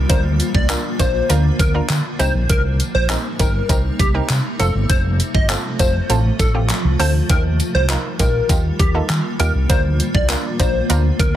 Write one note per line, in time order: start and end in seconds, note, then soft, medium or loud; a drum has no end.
0.00 4.56 A#3 medium
0.00 2.16 F4 medium
0.00 downlifter medium
0.09 0.39 D2 loud
0.09 2.18 D3 medium
0.09 2.17 F3 medium
0.09 0.52 A#3 medium
0.09 0.52 D4 medium
0.09 0.52 F4 medium
0.09 0.52 A#4 medium
0.09 0.22 C5 loud
0.09 kick loud
0.09 closed hi-hat loud
0.09 tambourine soft
0.40 closed hi-hat medium
0.40 tambourine soft
0.55 0.74 C2 loud
0.55 0.67 D5 medium
0.55 kick medium
0.69 0.91 A#3 medium
0.69 0.91 D4 medium
0.69 0.91 F4 medium
0.69 0.91 A#4 medium
0.69 clap loud
0.69 closed hi-hat medium
0.69 tambourine loud
0.99 1.19 A#1 loud
0.99 1.21 A#3 medium
0.99 1.21 D4 medium
0.99 1.21 F4 medium
0.99 1.42 C5 medium
0.99 1.21 C5 medium
0.99 kick medium
0.99 closed hi-hat medium
0.99 tambourine medium
1.29 1.49 D2 loud
1.29 1.61 A#3 medium
1.29 1.61 D4 medium
1.29 1.61 F4 medium
1.29 1.62 A#4 medium
1.29 closed hi-hat loud
1.29 tambourine medium
1.59 1.79 D2 medium
1.59 1.72 A#4 medium
1.59 kick loud
1.59 closed hi-hat medium
1.59 tambourine soft
1.74 2.06 A#3 medium
1.74 2.06 D4 medium
1.74 2.06 F4 medium
1.74 2.07 A#4 medium
1.90 2.00 D3 loud
1.90 clap loud
1.90 closed hi-hat loud
1.90 tambourine medium
2.19 2.29 C2 loud
2.19 7.26 C3 medium
2.19 4.57 G3 medium
2.19 2.91 C4 medium
2.19 2.91 D#4 medium
2.19 4.57 D#4 medium
2.19 2.92 G4 medium
2.19 2.92 A#4 loud
2.19 2.32 C5 medium
2.19 closed hi-hat medium
2.19 tambourine medium
2.35 2.44 A#1 medium
2.50 2.79 C2 loud
2.50 2.62 A#4 loud
2.50 kick loud
2.50 closed hi-hat loud
2.80 closed hi-hat medium
2.80 tambourine soft
2.95 3.14 A#1 medium
2.95 3.07 C5 medium
3.09 3.31 C4 medium
3.09 3.31 D#4 medium
3.09 3.31 G4 medium
3.09 3.31 A#4 medium
3.09 clap loud
3.09 closed hi-hat medium
3.09 tambourine medium
3.39 3.59 G1 medium
3.39 3.61 C4 medium
3.39 3.61 D#4 medium
3.39 3.61 G4 medium
3.39 3.82 A#4 medium
3.39 3.61 A#4 medium
3.39 kick medium
3.39 closed hi-hat medium
3.39 tambourine medium
3.69 3.89 C2 loud
3.69 4.01 C4 medium
3.69 4.01 D#4 medium
3.69 4.01 G4 medium
3.69 4.02 A#4 medium
3.69 kick loud
3.69 closed hi-hat loud
3.69 tambourine medium
3.99 4.19 C2 loud
3.99 4.12 G4 medium
3.99 kick loud
3.99 closed hi-hat medium
3.99 tambourine soft
4.14 4.46 C4 medium
4.14 4.46 D#4 medium
4.14 4.46 G4 medium
4.14 4.46 A#4 medium
4.30 4.40 C3 loud
4.30 clap loud
4.30 closed hi-hat loud
4.30 tambourine medium
4.59 4.70 F1 loud
4.59 7.27 F3 medium
4.59 5.31 A3 medium
4.59 7.27 A3 medium
4.59 5.32 C4 medium
4.59 11.36 F4 medium
4.59 5.32 F4 medium
4.59 4.72 A4 medium
4.59 5.32 A4 medium
4.59 closed hi-hat medium
4.59 tambourine medium
4.75 4.85 G1 medium
4.89 5.19 F1 loud
4.89 5.02 C5 loud
4.89 kick loud
4.89 closed hi-hat loud
4.89 tambourine soft
5.20 closed hi-hat medium
5.20 tambourine soft
5.34 5.54 G1 medium
5.34 5.47 D#5 medium
5.34 kick medium
5.49 5.71 A3 medium
5.49 5.71 C4 medium
5.49 5.71 F4 medium
5.49 5.71 A4 medium
5.49 clap loud
5.49 closed hi-hat medium
5.49 tambourine loud
5.79 5.99 F1 loud
5.79 6.01 A3 medium
5.79 6.01 C4 medium
5.79 6.01 F4 medium
5.79 6.01 A4 medium
5.79 6.22 C5 loud
5.79 kick medium
5.79 closed hi-hat medium
5.79 tambourine medium
6.09 6.29 A1 loud
6.09 6.41 A3 medium
6.09 6.41 C4 medium
6.09 6.41 F4 medium
6.09 6.42 A4 medium
6.09 closed hi-hat loud
6.09 tambourine medium
6.39 6.69 A1 medium
6.39 6.52 A4 medium
6.39 kick loud
6.39 closed hi-hat medium
6.39 tambourine soft
6.54 6.86 A3 medium
6.54 6.86 C4 medium
6.54 6.86 F4 medium
6.54 6.86 G4 medium
6.70 clap loud
6.70 closed hi-hat loud
6.70 tambourine medium
6.85 6.94 C2 medium
6.99 7.19 D2 loud
6.99 7.21 A3 medium
6.99 7.21 C4 medium
6.99 7.21 F4 medium
6.99 7.21 A4 medium
6.99 7.12 C5 medium
6.99 open hi-hat medium
6.99 tambourine medium
7.29 7.59 D#2 loud
7.29 9.67 D#3 medium
7.29 9.67 G3 medium
7.29 7.72 A#3 medium
7.29 11.36 A#3 medium
7.29 7.72 D#4 medium
7.29 7.72 F4 medium
7.29 7.72 G4 medium
7.29 7.42 A#4 loud
7.29 kick loud
7.29 closed hi-hat loud
7.29 tambourine soft
7.60 closed hi-hat medium
7.60 tambourine soft
7.75 7.94 C2 loud
7.75 7.87 C5 medium
7.89 8.11 A#3 medium
7.89 8.11 D#4 medium
7.89 8.11 F4 medium
7.89 8.11 A#4 medium
7.89 clap loud
7.89 closed hi-hat medium
7.89 tambourine loud
8.19 8.39 A#1 medium
8.19 8.41 A#3 medium
8.19 8.41 D#4 medium
8.19 8.41 F4 medium
8.19 8.41 G4 medium
8.19 8.62 A#4 medium
8.19 kick medium
8.19 closed hi-hat medium
8.19 tambourine medium
8.49 8.69 D#2 medium
8.49 8.81 A#3 medium
8.49 8.81 D#4 medium
8.49 8.82 F4 medium
8.49 8.82 G4 medium
8.49 kick loud
8.49 closed hi-hat loud
8.49 tambourine medium
8.79 8.99 D#2 medium
8.79 8.92 G4 medium
8.79 kick loud
8.79 closed hi-hat medium
8.94 9.26 A#3 medium
8.94 9.26 D#4 medium
8.94 9.26 F4 medium
8.94 9.27 A4 medium
9.10 9.19 D#3 loud
9.10 clap loud
9.10 closed hi-hat loud
9.10 tambourine medium
9.39 9.50 D#2 medium
9.39 9.61 A#3 medium
9.39 9.61 D#4 medium
9.39 9.61 F4 medium
9.39 9.61 G4 medium
9.39 9.52 A#4 medium
9.39 closed hi-hat medium
9.39 tambourine medium
9.55 9.64 C2 medium
9.69 9.99 D2 loud
9.69 11.36 D3 medium
9.69 11.36 F3 medium
9.69 10.12 A#3 medium
9.69 10.12 D4 medium
9.69 10.12 F4 medium
9.69 10.12 A#4 medium
9.69 9.82 C5 loud
9.69 kick loud
9.69 closed hi-hat loud
9.69 tambourine soft
10.00 closed hi-hat medium
10.00 tambourine soft
10.15 10.34 C2 loud
10.15 10.27 D5 medium
10.15 kick loud
10.29 10.51 A#3 medium
10.29 10.51 D4 medium
10.29 10.51 F4 medium
10.29 10.51 A#4 medium
10.29 clap loud
10.29 closed hi-hat medium
10.29 tambourine loud
10.59 10.79 A#1 loud
10.59 10.81 A#3 medium
10.59 10.81 D4 medium
10.59 10.81 F4 medium
10.59 10.81 A#4 medium
10.59 11.02 C5 medium
10.59 kick medium
10.59 closed hi-hat medium
10.59 tambourine medium
10.89 11.09 D2 loud
10.89 11.21 A#3 medium
10.89 11.21 D4 medium
10.89 11.22 F4 medium
10.89 11.22 A#4 medium
10.89 closed hi-hat loud
10.89 tambourine medium
11.20 11.36 D2 medium
11.20 11.32 A#4 medium
11.20 kick loud
11.20 closed hi-hat medium
11.20 tambourine soft